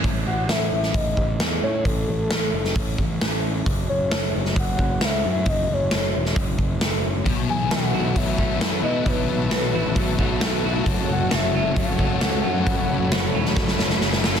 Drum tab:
HH |o---o---o---o---|o---o---o---o---|o---o---o---o---|o---o---o---o---|
SD |----o--o----o---|----o--o----o---|----o--o----o---|----o--o----o---|
BD |o-------o-o-----|o-------o-o-----|o-------o-o-----|o-------o-o-----|

HH |o---o---o---o---|o---o---o---o---|o---o---o---o---|o---o-----------|
SD |----o-------o---|----o-------o---|----o-------o---|----o--ooooooooo|
BD |o-------o-o-----|o-------o-o-----|o-------o-o-----|o-------o-------|